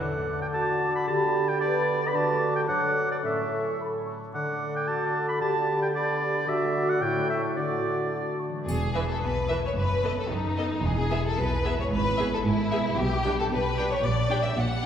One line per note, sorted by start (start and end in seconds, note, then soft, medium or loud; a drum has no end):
0.00 1.06 D3 medium
0.00 2.11 D3 soft
0.00 0.16 A3 soft
0.00 0.50 A4 medium
0.00 1.08 A4 medium
0.00 0.37 F#5 medium
0.00 1.04 D6 soft
0.17 1.10 A3 soft
0.35 0.70 D5 soft
0.42 0.47 G5 medium
0.53 1.07 F#4 medium
0.53 1.10 A4 soft
0.53 0.94 A5 medium
0.71 1.42 D5 soft
0.90 1.10 F#4 soft
0.95 1.07 B5 medium
1.07 2.13 D3 medium
1.07 2.13 G4 medium
1.07 1.60 G4 medium
1.07 1.50 A5 medium
1.07 2.15 B5 medium
1.25 2.16 B3 soft
1.44 1.77 D5 soft
1.48 1.60 G5 medium
1.61 2.16 B4 medium
1.61 2.68 B4 medium
1.61 2.09 D5 medium
1.96 2.16 G4 soft
2.08 2.17 B5 medium
2.14 2.70 D3 medium
2.14 2.69 F#4 medium
2.14 2.55 A5 medium
2.14 3.23 D6 medium
2.32 2.85 A3 soft
2.50 3.25 F#4 soft
2.50 3.03 D5 soft
2.56 2.62 G5 medium
2.67 3.25 F#2 medium
2.67 3.25 F#3 medium
2.67 3.21 A4 medium
2.67 4.06 A4 medium
2.67 3.08 F#5 medium
2.86 3.40 A3 soft
3.04 3.77 A4 soft
3.04 3.25 D5 soft
3.11 3.17 D5 medium
3.22 4.36 A2 soft
3.22 4.07 A3 medium
3.22 4.04 C#4 medium
3.22 3.79 E5 medium
3.22 3.73 C#6 soft
3.42 4.51 A3 soft
3.60 3.96 C#5 soft
3.79 4.15 A4 soft
3.79 3.86 B5 medium
3.97 4.36 C#5 soft
4.06 4.12 C#6 soft
4.16 4.86 A4 soft
4.33 5.39 D3 medium
4.33 6.43 D3 medium
4.33 5.42 A4 medium
4.33 4.71 F#5 medium
4.33 5.36 D6 medium
4.52 5.43 A3 soft
4.69 5.03 D5 soft
4.76 4.89 G5 medium
4.87 5.37 F#4 medium
4.87 5.21 A4 soft
4.87 5.28 A5 medium
5.22 5.43 A4 soft
5.28 5.41 B5 medium
5.40 6.45 D3 medium
5.40 5.92 G4 medium
5.40 6.49 G4 medium
5.40 5.80 A5 medium
5.40 6.47 B5 soft
5.58 6.49 B3 soft
5.76 6.10 D5 soft
5.82 5.88 G5 medium
5.94 6.06 A4 medium
5.94 6.49 B4 soft
5.94 6.50 D5 medium
6.12 6.81 D5 soft
6.21 6.47 G4 medium
6.29 6.49 G4 soft
6.47 7.03 D3 medium
6.47 7.03 F#4 medium
6.47 7.00 F#4 medium
6.47 6.91 E5 medium
6.47 7.00 D6 medium
6.64 7.17 A3 soft
6.82 7.03 F#4 soft
6.82 7.03 D5 medium
6.89 7.03 F#5 medium
7.00 7.58 A2 medium
7.00 7.57 A2 medium
7.00 7.55 E4 medium
7.00 7.55 A4 medium
7.00 7.28 G5 medium
7.00 7.56 C#6 medium
7.19 7.72 A3 soft
7.30 7.42 E5 medium
7.37 7.58 E4 soft
7.37 7.58 C#5 soft
7.55 8.69 D3 medium
7.55 8.39 D3 medium
7.55 8.38 F#4 medium
7.55 8.38 D5 medium
7.55 8.05 D6 soft
7.73 8.69 A3 soft
7.93 8.28 D5 soft
8.11 8.69 A4 soft
8.11 8.18 D6 medium
8.30 8.69 D5 soft
8.39 8.45 C#6 soft
8.48 9.70 E3 soft
8.48 8.69 F#4 soft
8.54 9.72 G#3 soft
8.58 9.74 E4 soft
8.63 9.71 B4 soft
8.67 9.11 E1 medium
8.67 9.11 E2 medium
8.67 9.05 G#4 medium
8.67 triangle soft
8.94 9.03 E3 soft
8.94 9.02 B4 soft
8.94 9.03 E5 soft
9.10 9.23 A4 medium
9.21 9.66 B1 medium
9.21 9.65 B2 medium
9.21 9.62 B4 medium
9.49 9.58 E3 soft
9.49 9.57 B4 soft
9.49 9.57 E5 soft
9.59 10.78 F#2 soft
9.64 10.80 A3 soft
9.64 9.70 C#5 medium
9.68 10.82 D#4 soft
9.73 10.19 F#1 medium
9.73 10.79 B4 soft
9.77 10.19 F#2 medium
9.77 10.17 B4 medium
10.03 10.12 B3 soft
10.03 10.11 A4 soft
10.03 10.12 D#5 soft
10.19 10.31 A4 medium
10.30 10.73 F#1 medium
10.30 10.73 F#2 medium
10.30 10.85 D#4 medium
10.57 10.65 B3 soft
10.57 10.65 A4 soft
10.57 10.66 D#5 soft
10.67 11.85 E2 soft
10.71 11.77 G#3 soft
10.76 11.82 E4 soft
10.80 11.27 E2 medium
10.80 11.86 B4 soft
10.84 11.27 E1 medium
10.84 11.25 G#4 medium
11.11 11.19 B3 medium
11.11 11.19 G#4 medium
11.11 11.20 E5 soft
11.27 11.39 A4 medium
11.38 11.80 B1 medium
11.38 11.80 B2 medium
11.38 11.78 B4 medium
11.65 11.73 B3 soft
11.65 11.73 G#4 soft
11.65 11.73 E5 medium
11.74 12.91 G#2 soft
11.78 12.93 G#3 soft
11.78 11.85 C#5 medium
11.83 12.96 E4 soft
11.87 14.03 B4 soft
11.92 12.34 G#1 medium
11.92 12.34 G#2 medium
11.92 12.32 B4 medium
12.18 12.26 B3 medium
12.18 12.27 G#4 medium
12.18 12.26 E5 medium
12.34 12.39 A4 medium
12.45 12.88 G#1 medium
12.45 12.87 G#2 medium
12.45 12.97 E4 medium
12.71 12.81 B3 soft
12.71 12.80 G#4 soft
12.71 12.79 E5 soft
12.80 13.96 B2 soft
12.85 13.89 G3 soft
12.89 13.94 D4 soft
12.93 13.98 D5 soft
12.98 13.40 B1 medium
12.98 13.40 B2 medium
12.98 13.37 G4 medium
13.24 13.33 D4 soft
13.24 13.33 G4 soft
13.24 13.32 G5 soft
13.39 13.44 A4 medium
13.51 13.92 B1 medium
13.51 13.92 B2 medium
13.51 13.90 B4 medium
13.77 13.85 D4 soft
13.77 13.85 G4 soft
13.77 13.85 G5 soft
13.85 14.86 A#2 soft
13.90 14.86 G3 soft
13.90 14.04 C#5 medium
13.95 14.86 D4 soft
13.99 14.45 A#2 medium
13.99 14.86 D5 soft
14.03 14.45 A#1 medium
14.03 14.43 D5 medium
14.29 14.37 D4 soft
14.29 14.37 G4 soft
14.29 14.38 G5 soft
14.44 14.56 E5 medium
14.56 14.86 A#1 medium
14.56 14.86 A#2 medium
14.56 14.86 F#5 medium
14.83 14.86 G5 soft